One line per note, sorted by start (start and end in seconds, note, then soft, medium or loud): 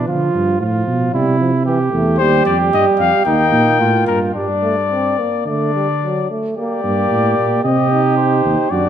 0.08 0.33 D3 medium
0.08 0.61 F3 medium
0.08 0.59 F4 medium
0.34 0.62 G2 medium
0.60 0.86 A2 medium
0.60 1.15 F3 medium
0.60 1.13 F4 medium
0.87 1.13 B2 medium
1.14 1.91 C3 medium
1.14 1.39 G3 medium
1.14 1.65 E4 medium
1.40 1.52 F3 medium
1.66 1.79 E3 medium
1.66 2.18 G4 medium
1.92 2.21 E2 medium
1.92 2.19 A3 medium
2.18 2.45 D#2 medium
2.18 2.72 G3 medium
2.18 3.24 G4 medium
2.18 2.43 C5 medium
2.45 2.72 F2 medium
2.45 2.58 D5 medium
2.73 2.85 G2 medium
2.73 3.25 G3 medium
2.73 2.85 D#5 medium
2.99 3.11 F2 medium
2.99 3.25 F5 medium
3.25 3.54 D#2 medium
3.25 4.33 A#3 medium
3.25 3.80 D#4 medium
3.25 4.06 G5 medium
3.53 3.81 A#2 medium
3.80 4.07 A2 medium
3.80 4.34 F4 medium
4.07 4.34 G2 medium
4.07 4.19 A#4 medium
4.34 5.16 G2 medium
4.34 4.48 G3 medium
4.34 5.16 D4 medium
4.34 5.43 D5 medium
4.63 4.75 A3 medium
4.91 5.21 C4 medium
5.19 5.49 A#3 medium
5.46 6.25 D3 medium
5.46 5.75 A3 medium
5.46 6.25 D4 medium
5.46 6.28 D5 medium
5.75 5.87 G3 medium
6.03 6.30 F#3 medium
6.31 6.57 A3 medium
6.57 6.82 A#3 medium
6.57 7.61 G4 medium
6.57 7.61 D5 medium
6.84 7.09 G2 medium
6.84 7.63 A#3 medium
7.11 7.37 A2 medium
7.38 7.64 A#2 medium
7.63 8.43 C3 medium
7.63 7.91 C4 medium
7.63 8.69 G4 medium
7.63 8.16 D#5 medium
7.92 8.71 D#4 medium
8.18 8.72 C5 medium
8.45 8.57 D#2 medium
8.71 8.89 F#2 medium
8.71 8.89 D4 medium
8.71 8.89 F#4 medium
8.71 8.89 D5 medium